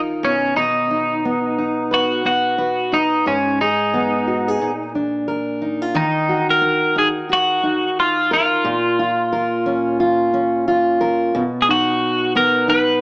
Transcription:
0.00 1.40 D#3 medium
0.00 0.91 D#4 soft
0.00 0.33 F4 soft
0.00 0.33 A#4 medium
0.23 0.55 B2 medium
0.23 0.56 C#4 medium
0.57 3.26 B2 medium
0.57 1.96 D#4 medium
0.91 1.58 D#4 soft
1.25 2.24 B3 medium
1.58 2.91 D#4 soft
1.91 2.25 F#4 medium
1.91 2.58 B4 medium
2.25 3.35 B3 soft
2.25 2.96 F#4 medium
2.58 3.35 B4 medium
2.92 3.35 D#4 soft
2.92 3.27 D#4 medium
3.26 4.61 G#2 medium
3.26 3.61 C#4 medium
3.61 4.92 D#4 medium
3.61 4.27 G#4 soft
3.94 4.70 B3 medium
4.28 4.48 F#4 soft
4.48 4.70 G#4 soft
4.61 6.04 A#2 medium
4.95 6.04 D4 soft
5.28 6.61 A#4 medium
5.62 5.82 D#4 medium
5.82 6.04 F4 soft
5.95 8.64 D#3 medium
5.95 6.47 D#4 medium
6.29 7.28 F#4 medium
6.50 6.98 A#4 loud
6.61 8.31 A#4 medium
6.96 7.62 D#4 medium
6.96 7.07 G#4 medium
7.29 7.97 F#4 medium
7.29 7.99 F#4 loud
7.63 8.73 D#4 medium
8.00 8.30 F4 medium
8.31 10.97 F4 medium
8.31 9.32 A#4 medium
8.64 11.34 A#2 medium
8.99 9.99 F4 medium
9.33 11.00 A#4 medium
9.66 10.32 C#4 medium
10.00 10.66 F4 medium
10.34 11.42 C#4 medium
10.68 11.43 F4 medium
11.01 11.42 A#4 medium
11.35 13.01 B2 medium
11.62 11.68 G#4 medium
11.69 12.67 D#4 medium
11.69 12.32 F#4 medium
12.35 13.01 B3 medium
12.35 12.69 A#4 medium
12.68 13.01 D#4 medium
12.68 13.01 B4 loud

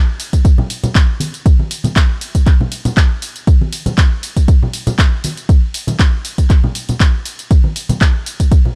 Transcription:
0.20 open hi-hat loud
0.20 ride medium
0.20 tambourine medium
0.33 kick medium
0.33 closed hi-hat medium
0.33 tambourine soft
0.45 kick loud
0.45 closed hi-hat medium
0.45 tambourine soft
0.58 low conga medium
0.70 open hi-hat loud
0.70 ride medium
0.70 tambourine medium
0.84 closed hi-hat medium
0.84 tambourine soft
0.84 low conga medium
0.95 kick loud
0.95 clap loud
0.95 closed hi-hat medium
0.95 tambourine soft
1.20 open hi-hat loud
1.20 ride medium
1.20 tambourine medium
1.20 high conga medium
1.34 closed hi-hat medium
1.34 tambourine soft
1.46 kick loud
1.46 closed hi-hat medium
1.46 tambourine soft
1.59 high conga medium
1.71 open hi-hat loud
1.71 ride medium
1.71 tambourine medium
1.84 closed hi-hat medium
1.84 tambourine soft
1.84 high conga medium
1.84 low conga medium
1.96 kick loud
1.96 clap loud
1.96 closed hi-hat soft
1.96 tambourine soft
2.21 open hi-hat loud
2.21 ride medium
2.21 tambourine medium
2.35 kick medium
2.35 closed hi-hat medium
2.35 tambourine soft
2.47 kick loud
2.47 clap soft
2.47 closed hi-hat medium
2.47 tambourine soft
2.61 low conga medium
2.72 open hi-hat loud
2.72 ride medium
2.72 tambourine medium
2.85 closed hi-hat medium
2.85 tambourine soft
2.85 low conga medium
2.97 kick loud
2.97 clap loud
2.97 closed hi-hat medium
2.97 tambourine soft
3.22 open hi-hat loud
3.22 ride medium
3.22 tambourine medium
3.36 closed hi-hat medium
3.36 tambourine soft
3.47 kick loud
3.47 closed hi-hat soft
3.47 tambourine soft
3.61 high conga medium
3.73 open hi-hat loud
3.73 ride medium
3.73 tambourine medium
3.86 closed hi-hat medium
3.86 tambourine soft
3.86 high conga medium
3.86 low conga medium
3.98 kick loud
3.98 clap loud
3.98 closed hi-hat medium
3.98 tambourine soft
4.23 open hi-hat loud
4.23 ride medium
4.23 tambourine medium
4.37 kick medium
4.37 closed hi-hat medium
4.37 tambourine soft
4.48 kick loud
4.48 closed hi-hat medium
4.48 tambourine soft
4.63 low conga medium
4.73 open hi-hat loud
4.73 ride medium
4.73 tambourine medium
4.87 closed hi-hat medium
4.87 tambourine soft
4.87 low conga medium
4.99 kick loud
4.99 clap loud
4.99 closed hi-hat medium
4.99 tambourine soft
5.24 open hi-hat loud
5.24 ride medium
5.24 tambourine medium
5.24 high conga medium
5.37 closed hi-hat medium
5.37 tambourine soft
5.49 kick loud
5.49 closed hi-hat medium
5.49 tambourine soft
5.74 open hi-hat loud
5.74 ride medium
5.74 tambourine medium
5.87 closed hi-hat medium
5.87 tambourine soft
5.87 high conga medium
5.87 low conga medium
5.99 kick loud
5.99 clap loud
5.99 closed hi-hat medium
5.99 tambourine soft
6.25 open hi-hat loud
6.25 ride medium
6.25 tambourine medium
6.38 kick medium
6.38 closed hi-hat medium
6.38 tambourine soft
6.50 kick loud
6.50 clap soft
6.50 closed hi-hat medium
6.50 tambourine soft
6.64 low conga medium
6.75 open hi-hat loud
6.75 ride medium
6.75 tambourine medium
6.89 closed hi-hat medium
6.89 tambourine soft
6.89 low conga medium
7.00 kick loud
7.00 clap loud
7.00 closed hi-hat medium
7.00 tambourine soft
7.25 open hi-hat loud
7.25 ride medium
7.25 tambourine medium
7.39 closed hi-hat medium
7.39 tambourine soft
7.51 kick loud
7.51 closed hi-hat medium
7.51 tambourine soft
7.64 high conga medium
7.76 open hi-hat loud
7.76 ride medium
7.76 tambourine medium
7.89 closed hi-hat medium
7.89 tambourine soft
7.89 high conga medium
7.89 low conga medium
8.01 kick loud
8.01 clap loud
8.01 closed hi-hat medium
8.01 tambourine soft
8.26 open hi-hat loud
8.26 ride medium
8.26 tambourine medium
8.40 kick medium
8.40 closed hi-hat medium
8.40 tambourine soft
8.52 kick loud
8.52 closed hi-hat medium
8.52 tambourine soft
8.65 low conga medium

